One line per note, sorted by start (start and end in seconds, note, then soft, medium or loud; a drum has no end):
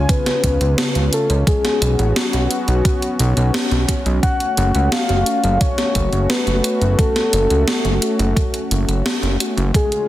0.00 1.45 C#3 medium
0.00 9.71 C#4 medium
0.00 1.45 F4 medium
0.00 0.11 C#5 medium
0.00 1.45 G#5 medium
0.09 1.13 B4 loud
0.09 kick loud
0.09 closed hi-hat medium
0.26 snare soft
0.26 closed hi-hat soft
0.44 0.58 C#2 medium
0.44 kick medium
0.44 closed hi-hat loud
0.61 0.75 C#2 medium
0.61 closed hi-hat soft
0.78 snare loud
0.78 closed hi-hat medium
0.95 1.10 C#2 medium
0.95 closed hi-hat soft
1.13 1.27 A4 medium
1.13 closed hi-hat medium
1.30 1.44 C#2 medium
1.30 closed hi-hat soft
1.47 4.20 B3 medium
1.47 4.20 F#4 medium
1.47 2.12 G#4 loud
1.47 kick loud
1.47 closed hi-hat medium
1.65 snare soft
1.65 closed hi-hat soft
1.82 1.96 B1 medium
1.82 closed hi-hat medium
1.99 2.13 A1 medium
1.99 closed hi-hat soft
2.16 3.50 F#4 medium
2.16 snare loud
2.16 closed hi-hat medium
2.33 2.48 B1 medium
2.33 closed hi-hat soft
2.51 closed hi-hat medium
2.68 2.82 B1 medium
2.68 closed hi-hat soft
2.85 kick loud
2.85 closed hi-hat medium
3.02 closed hi-hat soft
3.20 3.34 B1 loud
3.20 closed hi-hat medium
3.37 3.51 B1 medium
3.37 closed hi-hat soft
3.54 snare loud
3.54 closed hi-hat medium
3.71 3.86 B1 medium
3.71 closed hi-hat soft
3.88 kick medium
3.88 closed hi-hat medium
4.06 4.20 B1 medium
4.06 closed hi-hat soft
4.23 9.71 A3 medium
4.23 9.71 F#4 medium
4.23 4.93 F#5 loud
4.23 kick loud
4.23 closed hi-hat medium
4.40 closed hi-hat soft
4.57 4.72 F#1 medium
4.57 closed hi-hat medium
4.75 4.89 C#2 medium
4.75 closed hi-hat soft
4.91 5.62 F5 loud
4.91 snare loud
4.91 closed hi-hat medium
5.09 5.24 F#1 medium
5.09 closed hi-hat soft
5.26 closed hi-hat medium
5.44 5.58 F#1 medium
5.44 closed hi-hat soft
5.61 6.29 C#5 loud
5.61 kick loud
5.61 closed hi-hat medium
5.78 snare soft
5.78 closed hi-hat soft
5.95 6.10 F#1 loud
5.95 kick medium
5.95 closed hi-hat medium
6.13 6.27 F#1 medium
6.13 closed hi-hat soft
6.29 7.00 B4 medium
6.29 snare loud
6.29 closed hi-hat medium
6.47 6.62 F#1 medium
6.47 closed hi-hat soft
6.64 closed hi-hat medium
6.81 6.96 F#1 medium
6.81 closed hi-hat soft
6.98 8.37 A4 medium
6.98 kick loud
6.98 closed hi-hat medium
7.16 snare soft
7.16 closed hi-hat soft
7.33 7.48 F#1 medium
7.33 closed hi-hat medium
7.50 7.65 C#2 medium
7.50 closed hi-hat soft
7.68 snare loud
7.68 closed hi-hat medium
7.85 7.99 F#1 medium
7.85 closed hi-hat soft
8.02 closed hi-hat medium
8.19 8.34 F#1 medium
8.19 closed hi-hat soft
8.37 kick loud
8.37 closed hi-hat medium
8.54 closed hi-hat soft
8.71 8.86 F#1 medium
8.71 closed hi-hat medium
8.88 9.03 F#1 medium
8.88 closed hi-hat soft
9.06 snare loud
9.06 closed hi-hat medium
9.22 9.37 F#1 medium
9.22 closed hi-hat soft
9.40 closed hi-hat medium
9.57 9.72 F#1 medium
9.57 closed hi-hat soft
9.74 10.08 C#3 medium
9.74 10.08 C#4 medium
9.74 10.08 F4 medium
9.74 10.08 G#4 medium
9.74 10.08 G#4 loud
9.74 kick loud
9.74 closed hi-hat medium
9.92 closed hi-hat soft